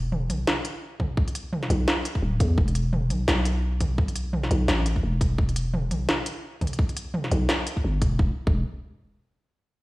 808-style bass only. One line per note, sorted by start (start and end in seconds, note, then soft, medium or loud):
0.00 0.31 E1 medium
0.30 0.46 B1 loud
1.70 1.86 B1 loud
2.22 2.39 D1 loud
2.40 2.57 E2 medium
2.58 3.12 E1 loud
3.10 3.27 B1 loud
3.28 4.50 B1 medium
4.51 4.67 B1 loud
4.68 5.02 A1 loud
5.03 5.93 E1 medium
5.91 6.07 B1 loud
7.32 7.48 B1 loud
7.84 8.03 G1 medium
8.02 8.18 E1 loud
8.19 8.30 E1 medium
8.47 8.63 E1 loud